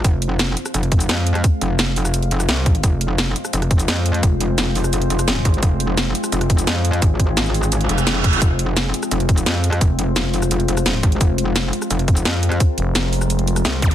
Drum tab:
HH |x-x-x-x-xxxxx-xx|x-x-x-o-xxxxx-xx|x-x-x-x-xxxxx-xx|x-x-x-o-xxxxx-xx|
SH |x---x-xxx-xxx---|x---x-xxx-xxx---|x---x-xxx-xxx---|x---x-xxx-xxx---|
SD |----o--r----o--r|----o--r---ro---|----o--r-r--o---|----o--r---ro---|
BD |o---------o-----|o-------------o-|o---------o-----|o-------------o-|

HH |x-x-x-x-xxxxx-xx|x-x-x-o-xxxxx-xx|x-x-x-x-xxxxx-xx|x-x-x-o-xxxxx-xx|
SH |x---x-xxx-xxx---|x---xxxxx-xxx--x|x---x-xxx-xxx---|x---x-xxx-xxx---|
SD |----o--r-r--o---|----o--r---ro---|----o--r----o--r|----o--r---ro---|
BD |o---------o-----|o-o-----------o-|o---------o-----|o-------------o-|

HH |x-x-x-x-xxxxx-xx|x-x-x-o-xxxxx-xx|
SH |x---x-xxx-xxx---|x---x-xxx-xxx---|
SD |----o--r----o--r|----o--r---ro---|
BD |o---------o-----|o-------------o-|